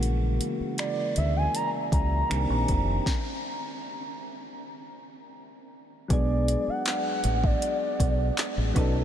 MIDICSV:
0, 0, Header, 1, 6, 480
1, 0, Start_track
1, 0, Tempo, 759494
1, 15, Time_signature, 4, 2, 24, 8
1, 5715, End_track
2, 0, Start_track
2, 0, Title_t, "Soft synth lead"
2, 0, Program_c, 0, 80
2, 500, Note_on_c, 0, 74, 90
2, 721, Note_off_c, 0, 74, 0
2, 742, Note_on_c, 0, 76, 100
2, 850, Note_off_c, 0, 76, 0
2, 861, Note_on_c, 0, 80, 100
2, 970, Note_off_c, 0, 80, 0
2, 983, Note_on_c, 0, 82, 109
2, 1071, Note_off_c, 0, 82, 0
2, 1222, Note_on_c, 0, 82, 105
2, 1673, Note_off_c, 0, 82, 0
2, 3870, Note_on_c, 0, 74, 102
2, 4229, Note_on_c, 0, 78, 100
2, 4239, Note_off_c, 0, 74, 0
2, 4342, Note_off_c, 0, 78, 0
2, 4347, Note_on_c, 0, 78, 107
2, 4704, Note_on_c, 0, 74, 94
2, 4714, Note_off_c, 0, 78, 0
2, 5540, Note_off_c, 0, 74, 0
2, 5715, End_track
3, 0, Start_track
3, 0, Title_t, "Synth keys"
3, 0, Program_c, 1, 88
3, 0, Control_c, 1, 64, 127
3, 0, Note_on_c, 1, 49, 67
3, 0, Note_on_c, 1, 52, 77
3, 0, Note_on_c, 1, 56, 70
3, 0, Note_on_c, 1, 58, 70
3, 0, Note_on_c, 1, 66, 84
3, 1423, Note_off_c, 1, 52, 0
3, 1427, Note_off_c, 1, 56, 0
3, 1431, Note_off_c, 1, 58, 0
3, 1435, Note_off_c, 1, 49, 0
3, 1438, Note_off_c, 1, 66, 0
3, 1451, Note_on_c, 1, 51, 66
3, 1454, Note_on_c, 1, 58, 64
3, 1458, Note_on_c, 1, 60, 62
3, 1462, Control_c, 1, 64, 0
3, 1462, Note_on_c, 1, 62, 61
3, 1466, Note_on_c, 1, 67, 73
3, 1589, Control_c, 1, 64, 127
3, 1933, Note_off_c, 1, 51, 0
3, 1935, Note_off_c, 1, 58, 0
3, 1937, Note_off_c, 1, 60, 0
3, 1939, Note_off_c, 1, 62, 0
3, 1941, Note_off_c, 1, 67, 0
3, 1944, Control_c, 1, 64, 0
3, 3844, Note_on_c, 1, 54, 65
3, 3851, Note_on_c, 1, 59, 59
3, 3858, Note_on_c, 1, 56, 61
3, 3866, Note_on_c, 1, 62, 61
3, 3873, Note_on_c, 1, 68, 76
3, 3967, Control_c, 1, 64, 127
3, 5505, Note_off_c, 1, 54, 0
3, 5508, Note_off_c, 1, 59, 0
3, 5512, Note_off_c, 1, 56, 0
3, 5515, Note_off_c, 1, 62, 0
3, 5519, Note_off_c, 1, 68, 0
3, 5521, Note_on_c, 1, 54, 81
3, 5529, Note_on_c, 1, 59, 72
3, 5537, Note_on_c, 1, 61, 72
3, 5543, Control_c, 1, 64, 0
3, 5544, Note_on_c, 1, 63, 76
3, 5551, Note_on_c, 1, 69, 86
3, 5661, Control_c, 1, 64, 127
3, 5715, Note_off_c, 1, 54, 0
3, 5715, Note_off_c, 1, 59, 0
3, 5715, Note_off_c, 1, 61, 0
3, 5715, Note_off_c, 1, 63, 0
3, 5715, Note_off_c, 1, 69, 0
3, 5715, End_track
4, 0, Start_track
4, 0, Title_t, "Fingered electric bass"
4, 0, Program_c, 2, 33
4, 0, Note_on_c, 2, 34, 92
4, 243, Note_off_c, 2, 34, 0
4, 741, Note_on_c, 2, 38, 94
4, 925, Note_off_c, 2, 38, 0
4, 1216, Note_on_c, 2, 37, 92
4, 1402, Note_off_c, 2, 37, 0
4, 1460, Note_on_c, 2, 36, 104
4, 1552, Note_off_c, 2, 36, 0
4, 1578, Note_on_c, 2, 34, 84
4, 1670, Note_off_c, 2, 34, 0
4, 1700, Note_on_c, 2, 29, 86
4, 1885, Note_off_c, 2, 29, 0
4, 3858, Note_on_c, 2, 35, 116
4, 4136, Note_off_c, 2, 35, 0
4, 4579, Note_on_c, 2, 33, 102
4, 4764, Note_off_c, 2, 33, 0
4, 5057, Note_on_c, 2, 35, 102
4, 5242, Note_off_c, 2, 35, 0
4, 5418, Note_on_c, 2, 33, 91
4, 5510, Note_off_c, 2, 33, 0
4, 5537, Note_on_c, 2, 35, 110
4, 5715, Note_off_c, 2, 35, 0
4, 5715, End_track
5, 0, Start_track
5, 0, Title_t, "Muted fingered electric bass strokes"
5, 381, Note_on_c, 9, 29, 49
5, 444, Note_off_c, 9, 29, 0
5, 4219, Note_on_c, 9, 29, 49
5, 4282, Note_off_c, 9, 29, 0
5, 5715, End_track
6, 0, Start_track
6, 0, Title_t, "Drums"
6, 17, Note_on_c, 9, 42, 71
6, 80, Note_off_c, 9, 42, 0
6, 257, Note_on_c, 9, 42, 75
6, 320, Note_off_c, 9, 42, 0
6, 493, Note_on_c, 9, 42, 71
6, 500, Note_on_c, 9, 26, 121
6, 556, Note_off_c, 9, 42, 0
6, 563, Note_off_c, 9, 26, 0
6, 733, Note_on_c, 9, 42, 70
6, 796, Note_off_c, 9, 42, 0
6, 977, Note_on_c, 9, 42, 80
6, 1040, Note_off_c, 9, 42, 0
6, 1214, Note_on_c, 9, 36, 91
6, 1218, Note_on_c, 9, 42, 70
6, 1278, Note_off_c, 9, 36, 0
6, 1281, Note_off_c, 9, 42, 0
6, 1459, Note_on_c, 9, 26, 112
6, 1460, Note_on_c, 9, 42, 77
6, 1522, Note_off_c, 9, 26, 0
6, 1523, Note_off_c, 9, 42, 0
6, 1696, Note_on_c, 9, 42, 64
6, 1698, Note_on_c, 9, 36, 88
6, 1760, Note_off_c, 9, 42, 0
6, 1762, Note_off_c, 9, 36, 0
6, 1936, Note_on_c, 9, 36, 109
6, 1940, Note_on_c, 9, 38, 94
6, 1999, Note_off_c, 9, 36, 0
6, 2003, Note_off_c, 9, 38, 0
6, 3856, Note_on_c, 9, 36, 113
6, 3857, Note_on_c, 9, 42, 71
6, 3919, Note_off_c, 9, 36, 0
6, 3920, Note_off_c, 9, 42, 0
6, 4098, Note_on_c, 9, 42, 78
6, 4161, Note_off_c, 9, 42, 0
6, 4333, Note_on_c, 9, 42, 77
6, 4340, Note_on_c, 9, 39, 122
6, 4396, Note_off_c, 9, 42, 0
6, 4403, Note_off_c, 9, 39, 0
6, 4574, Note_on_c, 9, 42, 74
6, 4637, Note_off_c, 9, 42, 0
6, 4699, Note_on_c, 9, 36, 101
6, 4762, Note_off_c, 9, 36, 0
6, 4817, Note_on_c, 9, 42, 83
6, 4880, Note_off_c, 9, 42, 0
6, 5054, Note_on_c, 9, 36, 91
6, 5057, Note_on_c, 9, 42, 78
6, 5118, Note_off_c, 9, 36, 0
6, 5121, Note_off_c, 9, 42, 0
6, 5297, Note_on_c, 9, 39, 120
6, 5298, Note_on_c, 9, 42, 85
6, 5360, Note_off_c, 9, 39, 0
6, 5361, Note_off_c, 9, 42, 0
6, 5535, Note_on_c, 9, 36, 103
6, 5536, Note_on_c, 9, 42, 69
6, 5598, Note_off_c, 9, 36, 0
6, 5599, Note_off_c, 9, 42, 0
6, 5715, End_track
0, 0, End_of_file